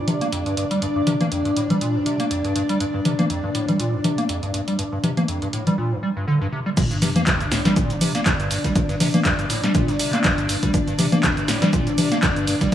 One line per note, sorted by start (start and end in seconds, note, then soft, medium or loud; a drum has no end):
0.00 5.78 D4 medium
0.00 5.78 D5 medium
0.08 0.19 C3 medium
0.08 closed hi-hat medium
0.08 low conga medium
0.21 0.28 A#3 loud
0.21 closed hi-hat medium
0.33 0.44 F2 medium
0.33 closed hi-hat medium
0.46 0.55 G2 medium
0.46 closed hi-hat soft
0.57 0.65 G2 medium
0.57 closed hi-hat medium
0.71 0.80 G3 medium
0.71 closed hi-hat medium
0.82 0.87 G2 medium
0.82 closed hi-hat medium
0.96 1.02 G2 medium
1.07 1.14 C3 loud
1.07 closed hi-hat medium
1.07 low conga medium
1.21 1.27 A#3 medium
1.21 closed hi-hat soft
1.21 low conga medium
1.32 1.43 F2 medium
1.32 closed hi-hat medium
1.45 1.52 G2 medium
1.45 closed hi-hat soft
1.57 1.68 A2 medium
1.57 closed hi-hat medium
1.70 1.79 G3 medium
1.70 closed hi-hat soft
1.70 low conga medium
1.81 1.96 A#2 medium
1.81 closed hi-hat medium
1.95 2.01 G2 loud
2.06 2.17 C3 medium
2.06 closed hi-hat medium
2.20 2.26 A#3 loud
2.20 closed hi-hat soft
2.31 2.42 F2 medium
2.31 closed hi-hat medium
2.44 2.54 G2 medium
2.44 closed hi-hat soft
2.56 2.63 G2 medium
2.56 closed hi-hat medium
2.69 2.78 G3 medium
2.69 closed hi-hat soft
2.80 2.85 G2 medium
2.80 closed hi-hat medium
2.94 3.00 G2 medium
3.05 3.13 C3 loud
3.05 closed hi-hat medium
3.05 low conga medium
3.19 3.25 A#3 loud
3.19 closed hi-hat soft
3.19 low conga medium
3.30 3.41 F2 medium
3.30 closed hi-hat medium
3.44 3.50 G2 medium
3.55 3.66 A2 medium
3.55 closed hi-hat medium
3.68 3.78 G3 medium
3.68 closed hi-hat soft
3.68 low conga medium
3.80 3.95 A#2 medium
3.80 closed hi-hat medium
3.93 3.99 G2 loud
4.04 4.16 C3 medium
4.04 closed hi-hat medium
4.04 low conga medium
4.18 4.24 A#3 loud
4.18 closed hi-hat soft
4.29 4.41 F2 medium
4.29 closed hi-hat medium
4.43 4.52 G2 medium
4.43 closed hi-hat soft
4.54 4.62 G2 medium
4.54 closed hi-hat medium
4.68 4.77 G3 medium
4.68 closed hi-hat soft
4.79 4.83 G2 medium
4.79 closed hi-hat medium
4.92 4.99 G2 medium
5.04 5.11 C3 loud
5.04 closed hi-hat medium
5.04 low conga medium
5.17 5.23 A#3 medium
5.17 closed hi-hat soft
5.17 low conga medium
5.28 5.40 F2 medium
5.28 closed hi-hat medium
5.42 5.48 G2 medium
5.42 closed hi-hat soft
5.53 5.64 A2 medium
5.53 closed hi-hat medium
5.67 5.76 G3 medium
5.67 closed hi-hat soft
5.67 low conga medium
5.78 5.93 A#2 medium
5.92 5.98 G2 loud
6.03 6.10 G3 medium
6.16 6.26 G2 medium
6.28 6.39 D3 loud
6.41 6.47 G2 loud
6.52 6.60 C3 medium
6.66 6.70 G3 medium
6.77 6.82 G2 medium
6.77 12.75 D4 medium
6.77 12.75 D5 medium
6.77 kick loud
6.77 closed hi-hat medium
6.77 crash loud
6.77 sub drop medium
6.77 shaker medium
6.77 shaker soft
6.91 6.97 G2 medium
6.91 closed hi-hat soft
6.91 shaker soft
7.02 7.09 C3 loud
7.02 snare soft
7.02 open hi-hat loud
7.02 low conga medium
7.02 shaker medium
7.16 7.22 A#3 loud
7.16 closed hi-hat medium
7.16 low conga medium
7.16 shaker soft
7.27 7.38 F2 medium
7.27 kick loud
7.27 snare loud
7.27 clap loud
7.27 closed hi-hat medium
7.27 shaker medium
7.27 shaker soft
7.40 7.47 G2 medium
7.40 closed hi-hat soft
7.40 shaker soft
7.52 7.63 A2 medium
7.52 snare medium
7.52 open hi-hat medium
7.52 shaker medium
7.65 7.74 G3 medium
7.65 snare medium
7.65 closed hi-hat soft
7.65 closed hi-hat medium
7.65 low conga medium
7.65 shaker soft
7.76 7.92 A#2 medium
7.76 kick loud
7.76 closed hi-hat medium
7.76 shaker medium
7.76 shaker soft
7.90 7.96 G2 loud
7.90 closed hi-hat soft
7.90 shaker soft
8.01 8.12 C3 medium
8.01 open hi-hat loud
8.01 low conga medium
8.01 shaker medium
8.15 8.21 A#3 loud
8.15 snare soft
8.15 snare medium
8.15 closed hi-hat medium
8.15 shaker soft
8.26 8.37 F2 medium
8.26 kick loud
8.26 snare loud
8.26 clap loud
8.26 closed hi-hat medium
8.26 shaker medium
8.26 shaker soft
8.40 8.49 G2 medium
8.40 closed hi-hat soft
8.40 shaker soft
8.51 8.58 G2 medium
8.51 open hi-hat medium
8.51 shaker medium
8.64 8.74 G3 medium
8.64 kick medium
8.64 snare medium
8.64 closed hi-hat medium
8.64 shaker soft
8.76 8.80 G2 medium
8.76 kick loud
8.76 closed hi-hat medium
8.76 shaker medium
8.76 shaker soft
8.89 8.95 G2 medium
8.89 snare soft
8.89 closed hi-hat soft
8.89 shaker soft
9.00 9.08 C3 loud
9.00 snare soft
9.00 open hi-hat loud
9.00 open hi-hat medium
9.00 low conga medium
9.00 shaker medium
9.14 9.20 A#3 loud
9.14 closed hi-hat medium
9.14 low conga loud
9.14 shaker soft
9.25 9.36 F2 medium
9.25 kick loud
9.25 snare loud
9.25 clap loud
9.25 closed hi-hat medium
9.25 shaker medium
9.25 shaker soft
9.39 9.45 G2 medium
9.39 closed hi-hat soft
9.39 shaker soft
9.50 9.61 A2 medium
9.50 open hi-hat loud
9.50 shaker medium
9.64 9.73 G3 medium
9.64 snare medium
9.64 closed hi-hat medium
9.64 shaker soft
9.75 9.90 A#2 medium
9.75 kick loud
9.75 closed hi-hat medium
9.75 shaker medium
9.75 shaker soft
9.88 9.94 G2 loud
9.88 snare medium
9.88 closed hi-hat soft
9.88 shaker soft
9.99 10.11 C3 medium
9.99 snare soft
9.99 open hi-hat loud
9.99 shaker medium
10.13 10.19 A#3 loud
10.13 clap soft
10.13 closed hi-hat medium
10.13 shaker soft
10.24 10.36 F2 medium
10.24 kick loud
10.24 snare loud
10.24 clap loud
10.24 closed hi-hat medium
10.24 shaker medium
10.24 shaker soft
10.38 10.47 G2 medium
10.38 closed hi-hat soft
10.38 shaker soft
10.49 10.57 G2 medium
10.49 open hi-hat loud
10.49 shaker medium
10.63 10.72 G3 medium
10.63 kick medium
10.63 closed hi-hat medium
10.63 closed hi-hat soft
10.63 shaker soft
10.74 10.78 G2 medium
10.74 kick loud
10.74 closed hi-hat medium
10.74 shaker medium
10.74 shaker soft
10.88 10.94 G2 medium
10.88 closed hi-hat soft
10.88 shaker soft
10.99 11.06 C3 loud
10.99 snare soft
10.99 open hi-hat loud
10.99 low conga medium
10.99 shaker medium
11.12 11.18 A#3 loud
11.12 closed hi-hat medium
11.12 low conga loud
11.12 shaker soft
11.23 11.35 F2 medium
11.23 kick loud
11.23 snare loud
11.23 clap loud
11.23 closed hi-hat medium
11.23 shaker medium
11.23 shaker soft
11.37 11.43 G2 medium
11.37 closed hi-hat soft
11.37 shaker soft
11.48 11.60 A2 medium
11.48 snare medium
11.48 open hi-hat loud
11.48 shaker medium
11.62 11.71 G3 medium
11.62 snare medium
11.62 closed hi-hat soft
11.62 closed hi-hat medium
11.62 low conga medium
11.62 shaker soft
11.73 11.88 A#2 medium
11.73 kick loud
11.73 closed hi-hat medium
11.73 shaker medium
11.73 shaker soft
11.87 11.93 G2 loud
11.87 closed hi-hat soft
11.87 shaker soft
11.98 12.09 C3 medium
11.98 open hi-hat loud
11.98 low conga medium
11.98 shaker medium
12.12 12.18 A#3 loud
12.12 snare medium
12.12 snare soft
12.12 closed hi-hat medium
12.12 shaker soft
12.23 12.34 F2 medium
12.23 kick loud
12.23 snare loud
12.23 clap loud
12.23 closed hi-hat medium
12.23 shaker medium
12.23 shaker soft
12.36 12.46 G2 medium
12.36 closed hi-hat soft
12.36 shaker soft
12.47 12.55 G2 medium
12.47 open hi-hat loud
12.47 shaker medium
12.61 12.70 G3 medium
12.61 kick medium
12.61 snare medium
12.61 closed hi-hat medium
12.61 shaker soft